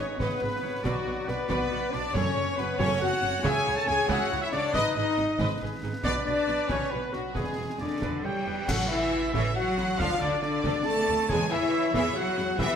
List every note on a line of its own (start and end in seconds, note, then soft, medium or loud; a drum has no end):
0.00 0.20 C#4 medium
0.00 0.19 B4 medium
0.00 0.20 C#5 medium
0.00 0.07 C#5 medium
0.19 0.27 G#1 medium
0.19 0.27 G#2 medium
0.19 0.85 B3 loud
0.19 0.83 B4 medium
0.19 0.85 B4 medium
0.19 0.40 B4 loud
0.19 0.84 B4 medium
0.19 0.86 B4 loud
0.19 0.84 B4 medium
0.19 0.43 C#5 medium
0.19 0.40 D#5 medium
0.19 concert bass drum medium
0.19 snare medium
0.41 0.49 G#1 medium
0.41 0.49 G#2 medium
0.41 0.50 G#4 medium
0.41 0.62 B4 medium
0.41 0.50 B4 medium
0.62 0.71 G#1 medium
0.62 0.71 G#2 medium
0.62 0.71 D#4 medium
0.62 0.71 G#4 medium
0.62 0.85 C#5 medium
0.84 0.92 B1 medium
0.84 0.93 B2 loud
0.84 1.29 F#3 loud
0.84 1.27 F#4 medium
0.84 1.31 F#4 medium
0.84 1.28 F#4 medium
0.84 1.30 F#4 medium
0.84 1.05 B4 medium
0.84 2.14 D5 medium
0.84 1.05 D5 medium
0.84 concert bass drum medium
0.84 snare medium
0.84 crash soft
1.06 1.15 B1 medium
1.06 1.14 B2 medium
1.06 1.15 F#4 medium
1.06 1.15 B4 medium
1.27 1.36 B1 medium
1.27 1.36 B2 medium
1.27 1.49 B3 loud
1.27 1.36 D4 medium
1.27 1.36 F#4 medium
1.27 1.48 B4 medium
1.27 1.36 B4 medium
1.27 1.49 B4 loud
1.27 snare medium
1.48 1.57 B1 loud
1.48 1.57 B2 loud
1.48 1.93 B3 loud
1.48 1.70 B4 loud
1.48 1.92 B4 medium
1.48 1.92 B4 loud
1.48 1.92 B4 medium
1.48 1.94 B4 loud
1.48 1.69 D5 loud
1.48 concert bass drum medium
1.48 snare medium
1.71 1.79 B1 medium
1.71 1.79 B2 medium
1.71 1.79 F#4 medium
1.71 1.79 B4 medium
1.91 2.01 B1 medium
1.91 2.01 B2 medium
1.91 2.14 D4 loud
1.91 2.00 D4 medium
1.91 2.01 F#4 medium
1.91 2.13 D5 loud
1.91 2.15 D5 loud
1.91 1.99 D5 loud
1.91 2.02 D5 loud
1.91 2.15 D5 loud
1.91 snare medium
2.13 2.22 F#1 loud
2.13 2.23 F#2 loud
2.13 2.58 C#4 loud
2.13 2.34 A4 loud
2.13 2.58 C#5 loud
2.13 2.55 C#5 loud
2.13 2.35 C#5 loud
2.13 2.58 C#5 loud
2.13 2.57 C#5 loud
2.13 4.75 C#5 loud
2.13 2.58 C#5 loud
2.13 concert bass drum medium
2.13 snare medium
2.35 2.44 F#1 medium
2.35 2.43 F#2 medium
2.35 2.44 F#4 medium
2.35 2.43 A4 medium
2.56 2.66 F#1 medium
2.56 2.65 F#2 medium
2.56 2.79 B3 loud
2.56 2.66 C#4 medium
2.56 2.66 F#4 medium
2.56 2.78 B4 loud
2.56 2.80 B4 loud
2.56 2.66 B4 medium
2.56 snare medium
2.78 2.88 F#1 loud
2.78 2.86 F#2 loud
2.78 3.01 C#4 loud
2.78 2.99 A4 loud
2.78 2.89 C#5 loud
2.78 2.85 C#5 loud
2.78 3.01 C#5 loud
2.78 3.00 C#5 loud
2.78 concert bass drum medium
2.78 snare medium
3.00 3.10 F#1 medium
3.00 3.09 F#2 medium
3.00 3.08 F#4 medium
3.00 3.44 F#4 loud
3.00 3.08 A4 medium
3.00 3.43 F#5 loud
3.00 3.44 F#5 loud
3.22 3.31 F#1 medium
3.22 3.30 F#2 medium
3.22 3.31 C#4 medium
3.22 3.31 F#4 medium
3.43 3.53 C#2 loud
3.43 3.51 C#3 loud
3.43 3.76 G#4 loud
3.43 3.65 G#4 loud
3.43 3.65 E5 loud
3.43 3.78 G#5 loud
3.43 3.76 G#5 loud
3.43 concert bass drum medium
3.43 snare medium
3.43 crash soft
3.65 3.74 C#2 medium
3.65 3.73 C#3 medium
3.65 3.74 E4 medium
3.65 3.73 C#5 medium
3.76 3.88 A4 loud
3.76 3.89 A5 loud
3.76 3.87 A5 loud
3.76 3.82 A5 loud
3.76 3.88 A5 loud
3.86 3.96 C#2 medium
3.86 3.94 C#3 medium
3.86 3.96 C#4 medium
3.86 3.96 G#4 medium
3.86 4.10 G#4 loud
3.86 4.09 G#5 loud
3.86 4.08 G#5 loud
3.86 snare medium
4.08 4.17 C#2 loud
4.08 4.16 C#3 loud
4.08 4.42 F#4 loud
4.08 4.30 G#4 loud
4.08 4.30 E5 loud
4.08 4.42 F#5 loud
4.08 4.44 F#5 loud
4.08 4.41 F#5 loud
4.08 4.42 F#5 loud
4.08 concert bass drum medium
4.08 snare medium
4.30 4.39 C#2 medium
4.30 4.38 C#3 medium
4.30 4.39 E4 medium
4.30 4.39 C#5 medium
4.41 4.54 E4 loud
4.41 4.51 E5 loud
4.41 4.53 E5 loud
4.41 4.46 E5 loud
4.41 4.53 E5 loud
4.52 4.61 C#2 medium
4.52 4.60 C#3 medium
4.52 4.60 C#4 medium
4.52 4.75 D4 loud
4.52 4.61 G#4 medium
4.52 4.74 D5 loud
4.52 4.61 D5 loud
4.52 4.74 D5 loud
4.52 4.77 D5 loud
4.52 snare medium
4.73 4.83 G#1 loud
4.73 4.81 G#2 loud
4.73 4.96 D#4 loud
4.73 5.16 B4 loud
4.73 4.94 B4 loud
4.73 4.94 D#5 loud
4.73 4.84 D#5 loud
4.73 4.95 D#5 loud
4.73 4.96 D#5 loud
4.73 concert bass drum medium
4.73 snare medium
4.95 5.04 G#1 medium
4.95 5.04 G#2 medium
4.95 5.39 D#4 loud
4.95 5.04 G#4 medium
4.95 5.04 B4 medium
4.95 5.38 D#5 loud
5.17 5.26 G#1 medium
5.17 5.26 G#2 medium
5.17 5.27 D#4 medium
5.17 5.26 G#4 medium
5.17 snare medium
5.38 5.48 G#1 loud
5.38 5.47 G#2 loud
5.38 7.31 B4 loud
5.38 5.60 B4 loud
5.38 5.60 D#5 loud
5.38 concert bass drum medium
5.38 snare medium
5.61 5.69 G#1 medium
5.61 5.69 G#2 medium
5.61 5.70 G#4 medium
5.61 5.70 B4 medium
5.82 5.91 G#1 medium
5.82 5.90 G#2 medium
5.82 5.91 D#4 medium
5.82 5.91 G#4 medium
6.04 6.12 B1 loud
6.04 6.12 B2 loud
6.04 6.23 D4 loud
6.04 6.25 B4 loud
6.04 6.24 D5 loud
6.04 6.12 D5 loud
6.04 6.14 D5 loud
6.04 6.24 D5 loud
6.04 6.23 D5 loud
6.04 concert bass drum medium
6.04 snare medium
6.04 crash soft
6.24 6.33 B1 medium
6.24 6.34 B2 medium
6.24 6.68 D4 loud
6.24 6.34 F#4 medium
6.24 6.67 D5 loud
6.24 6.68 D5 loud
6.47 6.55 B1 medium
6.47 6.55 B2 medium
6.47 6.55 D4 medium
6.47 snare medium
6.68 6.77 B1 loud
6.68 6.77 B2 medium
6.68 6.90 C#4 loud
6.68 6.90 B4 loud
6.68 6.91 C#5 loud
6.68 6.92 C#5 loud
6.68 6.90 C#5 loud
6.68 6.91 C#5 loud
6.68 concert bass drum medium
6.68 snare medium
6.90 7.00 B1 medium
6.90 6.99 B2 medium
6.90 7.13 B3 loud
6.90 7.00 F#4 medium
6.90 6.98 B4 medium
6.90 7.14 B4 medium
6.90 7.13 B4 medium
6.90 7.15 B4 medium
7.12 7.22 B1 medium
7.12 7.21 B2 medium
7.12 7.34 F#3 medium
7.12 7.21 D4 medium
7.12 7.34 F#4 medium
7.12 7.35 F#4 medium
7.12 7.21 F#4 medium
7.12 7.35 F#4 medium
7.12 snare medium
7.34 7.43 E1 medium
7.34 7.43 E2 medium
7.34 7.80 G#3 medium
7.34 8.01 G#4 medium
7.34 7.96 G#4 medium
7.34 7.79 G#4 medium
7.34 7.80 G#4 medium
7.34 7.79 G#4 medium
7.34 7.55 B4 medium
7.34 concert bass drum medium
7.34 snare medium
7.57 7.66 E1 medium
7.57 7.65 E2 medium
7.57 7.66 G#4 medium
7.79 7.88 E1 medium
7.79 7.87 E2 medium
7.79 8.20 D3 medium
7.79 8.20 D4 medium
7.79 7.89 E4 medium
7.79 8.21 D5 medium
7.79 8.27 D5 medium
8.00 8.10 E1 medium
8.00 8.08 E2 medium
8.00 8.12 B4 medium
8.00 8.23 B4 medium
8.00 concert bass drum medium
8.00 snare medium
8.23 8.32 E1 medium
8.23 8.31 E2 medium
8.23 8.68 G3 medium
8.23 8.67 G4 medium
8.23 8.33 G#4 medium
8.23 8.46 C#5 medium
8.23 8.67 G5 medium
8.23 8.68 G5 medium
8.46 8.54 E1 medium
8.46 8.54 E2 medium
8.46 8.56 E4 medium
8.46 8.68 B4 medium
8.67 8.76 A1 loud
8.67 8.90 F#3 loud
8.67 8.89 C#4 loud
8.67 8.89 F#4 loud
8.67 8.88 A4 loud
8.67 8.90 F#5 loud
8.67 8.78 F#5 loud
8.67 8.90 F#5 loud
8.67 concert bass drum medium
8.67 snare medium
8.67 crash medium
8.89 8.99 A1 medium
8.89 9.32 E3 loud
8.89 8.98 C#4 medium
8.89 9.32 E4 loud
8.89 8.98 A4 medium
8.89 9.33 E5 loud
8.89 9.32 E5 loud
8.89 9.33 E5 loud
8.89 9.33 E5 medium
9.33 9.42 A1 loud
9.33 9.55 E3 loud
9.33 9.54 C#4 loud
9.33 9.43 E4 loud
9.33 9.54 A4 loud
9.33 9.95 C#5 loud
9.33 9.55 E5 loud
9.33 9.41 E5 loud
9.33 concert bass drum medium
9.33 snare medium
9.55 9.98 F#3 loud
9.55 9.98 F#4 loud
9.55 9.98 F#5 loud
9.55 10.01 F#5 loud
9.55 9.98 F#5 loud
9.55 9.99 F#5 loud
9.77 9.85 A1 medium
9.77 9.86 A3 medium
9.77 9.86 E4 medium
9.77 snare medium
9.98 10.06 D2 loud
9.98 10.20 F3 loud
9.98 10.19 D4 loud
9.98 10.20 F4 loud
9.98 10.19 A4 medium
9.98 11.27 D5 loud
9.98 10.20 F5 loud
9.98 10.21 F5 loud
9.98 10.20 F5 loud
9.98 10.09 F5 loud
9.98 concert bass drum medium
9.98 snare medium
10.19 10.29 D2 medium
10.19 10.40 D3 loud
10.19 10.40 D4 loud
10.19 10.29 D4 medium
10.19 10.29 A4 medium
10.19 10.41 D5 loud
10.19 10.40 D5 medium
10.19 10.42 D5 loud
10.41 10.84 D3 medium
10.41 10.84 D4 loud
10.41 10.84 D5 loud
10.41 10.85 D5 loud
10.41 snare medium
10.64 10.72 D2 loud
10.64 10.84 D4 loud
10.64 10.84 A4 loud
10.64 concert bass drum medium
10.64 snare medium
10.84 11.28 A3 loud
10.84 11.28 A4 loud
10.84 11.28 A5 loud
10.84 11.31 A5 loud
10.84 11.28 A5 loud
11.08 11.16 D2 medium
11.08 11.17 A3 medium
11.08 11.17 F4 medium
11.28 11.37 E2 loud
11.28 11.50 G#3 loud
11.28 11.50 B3 loud
11.28 11.38 G#4 loud
11.28 11.49 G#4 loud
11.28 12.56 C#5 loud
11.28 11.39 G#5 loud
11.28 11.50 G#5 loud
11.28 11.53 G#5 loud
11.28 concert bass drum medium
11.28 snare medium
11.28 crash soft
11.50 11.60 E2 medium
11.50 11.92 E3 loud
11.50 11.60 B3 medium
11.50 11.93 E4 loud
11.50 11.60 G#4 medium
11.50 11.94 E5 loud
11.50 11.93 E5 loud
11.50 11.95 E5 loud
11.93 12.02 E2 loud
11.93 12.15 E3 loud
11.93 12.14 B3 loud
11.93 12.15 E4 loud
11.93 12.14 G#4 loud
11.93 12.15 E5 loud
11.93 12.18 E5 loud
11.93 12.15 E5 loud
11.93 12.16 E5 loud
11.93 concert bass drum medium
11.93 snare medium
12.14 12.57 F#3 loud
12.14 12.58 F#4 loud
12.14 12.39 F#5 loud
12.14 12.59 F#5 loud
12.14 12.61 F#5 loud
12.14 12.59 F#5 loud
12.37 12.45 E2 medium
12.37 12.46 G#3 medium
12.37 12.46 E4 medium
12.37 snare medium
12.58 12.67 G1 loud
12.58 12.76 E3 loud
12.58 12.76 B3 loud
12.58 12.76 E4 loud
12.58 12.76 G4 loud
12.58 12.76 B4 loud
12.58 12.65 E5 loud
12.58 12.69 E5 loud
12.58 12.76 E5 loud
12.58 concert bass drum medium
12.58 snare medium